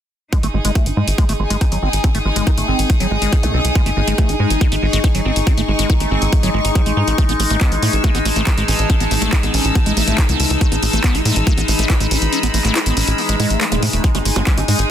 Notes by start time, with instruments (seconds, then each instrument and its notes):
0.32 synth drone G#3 D#4, acid bass G#3, string section D#4, kick, closed hi-hat
0.42 analog synth bass G#1, acid bass A3, string section G#4, closed hi-hat
0.54 analog synth bass G#1, acid bass G#3
0.65 analog synth bass G#1, acid bass G#3, closed hi-hat
0.75 acid bass A3, kick, closed hi-hat
0.86 analog synth bass G#1, acid bass D#4, closed hi-hat
0.97 analog synth bass G#2, acid bass G#3
1.08 analog synth bass G#1, closed hi-hat
1.18 acid bass G#3, kick, closed hi-hat
1.29 analog synth bass G#1, acid bass A3, closed hi-hat
1.39 analog synth bass G#1, acid bass G#3, string section G#5
1.50 analog synth bass G#1, acid bass G#3, closed hi-hat
1.61 acid bass D#4, kick, closed hi-hat
1.72 analog synth bass G#1, acid bass F#3, closed hi-hat
1.83 analog synth bass G#1, acid bass C4, string section D#6
1.93 analog synth bass G#1, closed hi-hat
2.04 acid bass C4, kick, closed hi-hat
2.15 analog synth bass G#1, acid bass A3, closed hi-hat
2.25 analog synth bass G#1, acid bass G#3
2.36 analog synth bass G#1, acid bass G#3, closed hi-hat
2.47 acid bass D#4, kick, closed hi-hat
2.58 analog synth bass G#1, acid bass A3, closed hi-hat
2.68 analog synth bass G#1, acid bass C4
2.79 analog synth bass G#1, closed hi-hat
2.90 acid bass G#3, kick, closed hi-hat
3.00 analog synth bass G#1, acid bass F#3, closed hi-hat
3.11 analog synth bass G#1, acid bass G#3
3.22 analog synth bass G#1, acid bass G#3, closed hi-hat
3.33 acid bass D#4, kick, closed hi-hat
3.43 analog synth bass C2, acid bass A3, closed hi-hat, zap
3.54 analog synth bass C2, acid bass C4
3.65 analog synth bass C2, closed hi-hat
3.75 acid bass G#3, kick, closed hi-hat
3.86 analog synth bass G#1, acid bass A3, closed hi-hat
3.97 analog synth bass G#1, acid bass G#3
4.08 analog synth bass G#1, acid bass G#3, closed hi-hat
4.18 acid bass A3, kick, closed hi-hat
4.29 analog synth bass G#1, acid bass D#4, closed hi-hat
4.40 analog synth bass G#2, acid bass G#3
4.50 analog synth bass G#1, closed hi-hat
4.61 acid bass G#3, kick, closed hi-hat
4.72 analog synth bass G#1, acid bass A3, closed hi-hat
4.83 analog synth bass G#1, acid bass G#3
4.87 string section C#6
4.93 analog synth bass G#1, acid bass G#3, closed hi-hat
5.04 acid bass D#4, kick, closed hi-hat
5.15 analog synth bass G#1, acid bass F#3, closed hi-hat
5.25 analog synth bass G#1, acid bass C4
5.36 analog synth bass G#1, closed hi-hat
5.47 acid bass C4, kick, closed hi-hat
5.58 analog synth bass G#1, acid bass A3, closed hi-hat
5.68 analog synth bass G#1, acid bass G#3
5.79 analog synth bass G#1, acid bass G#3, closed hi-hat
5.90 acid bass D#4, kick, closed hi-hat
6.00 analog synth bass G#1, acid bass A3, closed hi-hat
6.11 analog synth bass G#1, acid bass C4
6.22 analog synth bass G#1, closed hi-hat
6.33 acid bass G#3, kick, closed hi-hat
6.43 analog synth bass G#1, acid bass F#3, closed hi-hat
6.54 analog synth bass G#1, acid bass G#3
6.65 analog synth bass G#1, acid bass D#4, closed hi-hat
6.75 acid bass F#3, kick, closed hi-hat
6.86 analog synth bass A1, acid bass G#3, closed hi-hat
6.97 analog synth bass G#2, acid bass D#4
7.08 analog synth bass A1, acid bass G#3, closed hi-hat
7.18 string section E3, acid bass A3, kick, closed hi-hat
7.29 analog synth bass A1, acid bass B3, closed hi-hat
7.40 analog synth bass A1, acid bass A3, open hi-hat
7.50 analog synth bass A1, acid bass A3, closed hi-hat
7.61 acid bass B3, kick, clap, closed hi-hat
7.72 analog synth bass A1, acid bass E4, closed hi-hat
7.83 analog synth bass A2, acid bass A3, open hi-hat
7.91 analog synth bass A1, string section E6, closed hi-hat
8.04 acid bass A3, kick, closed hi-hat
8.15 analog synth bass A1, acid bass B3, closed hi-hat
8.25 analog synth bass A1, acid bass A3, string section A5, open hi-hat
8.36 analog synth bass A1, acid bass A3, closed hi-hat
8.47 acid bass E4, kick, clap, closed hi-hat
8.58 analog synth bass A1, acid bass G#3, closed hi-hat
8.68 analog synth bass A1, acid bass C#4, open hi-hat
8.79 analog synth bass A1, closed hi-hat
8.90 acid bass C#4, kick, closed hi-hat
9.00 analog synth bass A1, acid bass B3, closed hi-hat
9.11 analog synth bass A1, acid bass A3, open hi-hat
9.22 analog synth bass A1, acid bass A3, closed hi-hat
9.33 acid bass E4, kick, clap, closed hi-hat
9.43 analog synth bass A1, acid bass B3, closed hi-hat
9.54 analog synth bass A1, acid bass C#4, open hi-hat
9.65 analog synth bass A1, closed hi-hat
9.75 acid bass A3, kick, closed hi-hat
9.86 analog synth bass A1, acid bass G#3, closed hi-hat
9.97 analog synth bass A1, acid bass A3, open hi-hat
10.08 analog synth bass A1, acid bass A3, closed hi-hat
10.18 acid bass E4, kick, clap, closed hi-hat
10.29 analog synth bass C#2, acid bass B3, closed hi-hat
10.40 analog synth bass C#2, acid bass C#4, open hi-hat
10.50 analog synth bass C#2, closed hi-hat
10.61 acid bass A3, kick, closed hi-hat
10.72 analog synth bass A1, acid bass B3, closed hi-hat
10.83 analog synth bass A1, acid bass A3, open hi-hat
10.93 analog synth bass A1, acid bass A3, closed hi-hat
11.04 acid bass B3, kick, clap, closed hi-hat
11.15 analog synth bass A1, acid bass E4, closed hi-hat
11.25 analog synth bass A2, acid bass A3, open hi-hat
11.36 analog synth bass A1, closed hi-hat
11.47 acid bass A3, kick, closed hi-hat
11.58 analog synth bass A1, acid bass B3, closed hi-hat
11.65 analog synth bass A1, acid bass A3, string section B5, open hi-hat
11.79 analog synth bass A1, acid bass A3, closed hi-hat
11.90 acid bass E4, kick, clap, closed hi-hat
12.00 analog synth bass A1, acid bass G#3, closed hi-hat
12.11 analog synth bass A1, acid bass C#4, open hi-hat
12.22 analog synth bass A1, closed hi-hat
12.33 acid bass C#4, closed hi-hat
12.43 analog synth bass A1, acid bass B3, closed hi-hat
12.54 analog synth bass A1, acid bass A3, open hi-hat
12.65 analog synth bass A1, acid bass A3, clap, closed hi-hat
12.75 acid bass E4, clap, closed hi-hat
12.86 analog synth bass A1, acid bass B3, closed hi-hat
12.97 analog synth bass A1, acid bass C#4, open hi-hat
13.08 analog synth bass A1, closed hi-hat
13.18 acid bass A3, open hi-hat, swell
13.29 analog synth bass A1, acid bass G#3, closed hi-hat
13.40 analog synth bass A2, acid bass G#3, open hi-hat
13.50 analog synth bass A1, acid bass A3, closed hi-hat
13.61 acid bass A3, clap, closed hi-hat
13.72 analog synth bass E1, acid bass A3, closed hi-hat, zap
13.83 analog synth bass A2, acid bass A3, open hi-hat
13.93 analog synth bass E1, acid bass A3, closed hi-hat
14.04 acid bass G#3, synth drone G#3 D#4, string section D#4, kick, closed hi-hat
14.15 analog synth bass G#1, acid bass A3, string section G#4, closed hi-hat, high bongo
14.21 string section G#5
14.25 analog synth bass G#1, acid bass G#3, open hi-hat
14.36 analog synth bass G#1, acid bass G#3, closed hi-hat, high bongo
14.47 acid bass G#3, kick, clap, closed hi-hat
14.58 analog synth bass G#1, acid bass D#4, closed hi-hat, high bongo
14.68 analog synth bass G#2, acid bass G#3, string section D#6, open hi-hat
14.79 analog synth bass G#1, closed hi-hat